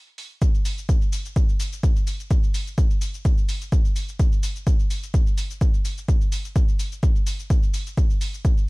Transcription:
0.18 open hi-hat medium
0.42 kick loud
0.42 shaker soft
0.54 shaker soft
0.65 open hi-hat medium
0.65 shaker medium
0.78 shaker soft
0.89 kick loud
0.89 shaker soft
1.02 shaker soft
1.13 open hi-hat medium
1.13 shaker medium
1.25 shaker soft
1.36 kick loud
1.36 shaker soft
1.49 shaker soft
1.60 open hi-hat medium
1.60 shaker medium
1.73 shaker soft
1.83 kick loud
1.83 shaker soft
1.96 shaker soft
2.07 open hi-hat medium
2.07 shaker medium
2.20 shaker soft
2.31 kick loud
2.31 shaker soft
2.43 shaker soft
2.54 open hi-hat medium
2.54 shaker medium
2.67 shaker soft
2.78 kick loud
2.78 shaker soft
2.91 shaker soft
3.01 open hi-hat medium
3.01 shaker medium
3.14 shaker soft
3.25 kick loud
3.25 shaker soft
3.38 shaker soft
3.49 open hi-hat medium
3.49 shaker medium
3.61 shaker soft
3.72 kick loud
3.72 shaker soft
3.85 shaker soft
3.96 open hi-hat medium
3.96 shaker medium
4.09 shaker soft
4.19 kick loud
4.19 shaker soft
4.32 shaker soft
4.43 open hi-hat medium
4.43 shaker medium
4.56 shaker soft
4.67 kick loud
4.67 shaker soft
4.80 shaker soft
4.90 open hi-hat medium
4.90 shaker medium
5.03 shaker soft
5.14 kick loud
5.14 shaker soft
5.27 shaker soft
5.38 open hi-hat medium
5.38 shaker medium
5.50 shaker soft
5.61 kick loud
5.61 shaker soft
5.74 shaker soft
5.85 open hi-hat medium
5.85 shaker medium
5.98 shaker soft
6.08 kick loud
6.08 shaker soft
6.21 shaker soft
6.32 open hi-hat medium
6.32 shaker medium
6.45 shaker soft
6.56 kick loud
6.56 shaker soft
6.68 shaker soft
6.79 open hi-hat medium
6.79 shaker medium
6.92 shaker soft
7.03 kick loud
7.03 shaker soft
7.16 shaker soft
7.27 open hi-hat medium
7.27 shaker medium
7.39 shaker soft
7.50 kick loud
7.50 shaker soft
7.63 shaker soft
7.74 open hi-hat medium
7.74 shaker medium
7.87 shaker soft
7.97 kick loud
7.97 shaker soft
8.10 shaker soft
8.21 open hi-hat medium
8.21 shaker medium
8.34 shaker soft
8.45 kick loud
8.45 shaker soft
8.58 shaker soft

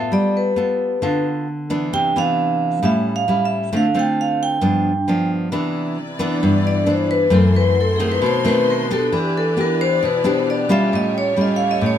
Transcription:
0.00 0.53 B3 medium
0.00 0.54 F4 medium
0.00 0.54 A4 medium
0.12 0.99 G3 medium
0.12 0.35 D5 medium
0.37 1.22 B4 medium
0.56 0.98 B3 soft
0.56 0.98 F4 soft
0.56 0.98 A4 soft
1.02 1.90 D3 medium
1.02 1.47 B3 medium
1.02 1.47 F4 medium
1.02 1.47 A4 medium
1.70 2.15 E3 medium
1.70 2.15 B3 medium
1.70 2.16 D4 medium
1.93 2.80 C3 medium
1.93 2.16 G5 loud
2.16 2.79 E3 medium
2.16 2.79 B3 medium
2.16 2.80 D4 medium
2.16 2.86 F5 medium
2.83 3.70 A2 medium
2.83 3.24 G3 medium
2.83 3.24 C#4 medium
2.83 3.24 E4 medium
2.83 3.14 E5 medium
3.16 3.45 F5 medium
3.28 3.71 G3 medium
3.28 3.71 C#4 soft
3.28 3.71 E4 medium
3.45 3.75 E5 medium
3.73 4.60 D3 medium
3.73 3.86 A3 medium
3.73 3.86 C4 medium
3.73 3.86 F4 medium
3.77 3.97 F5 medium
3.94 4.58 A3 medium
3.94 4.59 C4 medium
3.94 4.59 F4 medium
3.99 4.20 G5 medium
4.21 4.42 F5 medium
4.43 5.27 G5 medium
4.61 5.50 G2 medium
4.61 4.91 F3 soft
4.61 4.91 B3 medium
4.61 4.91 D4 medium
5.08 5.51 F3 soft
5.08 5.51 B3 medium
5.08 5.51 D4 medium
5.52 6.40 C3 medium
5.52 5.97 E3 medium
5.52 5.97 B3 medium
5.52 5.97 D4 medium
5.52 7.30 E4 medium
5.52 7.30 B4 medium
5.52 7.30 D5 medium
6.19 6.83 E3 medium
6.19 6.83 B3 medium
6.19 6.84 D4 medium
6.43 7.30 G2 medium
6.67 6.88 D5 medium
6.86 7.28 E3 medium
6.86 7.28 B3 soft
6.86 7.28 D4 medium
6.86 7.10 C5 medium
7.11 7.32 B4 medium
7.30 8.19 F#2 medium
7.30 7.76 E3 medium
7.30 7.76 A3 medium
7.30 8.21 A3 medium
7.30 7.77 C4 medium
7.30 8.21 E4 medium
7.30 8.21 F#4 medium
7.30 9.10 C6 medium
7.34 7.55 A4 medium
7.56 7.77 B4 medium
7.81 7.93 A4 medium
7.96 8.41 D#3 medium
7.96 8.41 C4 medium
7.96 8.09 G#4 medium
8.00 8.41 A3 medium
8.12 8.24 B4 medium
8.21 9.09 B2 medium
8.21 9.11 D#4 medium
8.21 9.11 A4 medium
8.21 10.89 B4 medium
8.26 8.46 C5 medium
8.44 8.86 D#3 medium
8.44 8.86 A3 medium
8.44 8.86 C4 medium
8.44 8.68 B4 medium
8.70 8.90 A#4 medium
8.90 9.55 B3 medium
8.90 9.56 D4 medium
8.90 9.56 G4 medium
8.90 9.13 A4 medium
9.11 10.00 E3 medium
9.11 10.89 E4 medium
9.11 11.98 G4 medium
9.11 10.89 D5 medium
9.17 9.36 G4 medium
9.38 9.58 A4 medium
9.57 10.01 B3 soft
9.57 10.02 D4 medium
9.57 10.02 G4 medium
9.61 9.81 A#4 medium
9.81 10.02 C5 loud
10.03 10.90 B2 medium
10.03 10.25 B4 medium
10.24 10.65 B3 medium
10.24 10.66 D4 medium
10.24 10.66 G4 medium
10.24 10.47 C5 medium
10.50 10.70 D5 medium
10.69 11.33 G3 medium
10.69 11.33 C#4 medium
10.69 11.34 F4 medium
10.69 10.92 E5 loud
10.91 11.80 A2 medium
10.91 11.98 A3 medium
10.91 11.98 F4 medium
10.91 11.98 C#5 medium
10.95 11.15 D#5 medium
11.18 11.38 C#5 medium
11.37 11.98 G3 soft
11.37 11.98 C#4 soft
11.37 11.98 F4 medium
11.41 11.53 D#5 medium
11.56 11.68 F5 medium
11.71 11.83 D#5 medium
11.81 11.98 A2 medium
11.86 11.98 C#5 medium

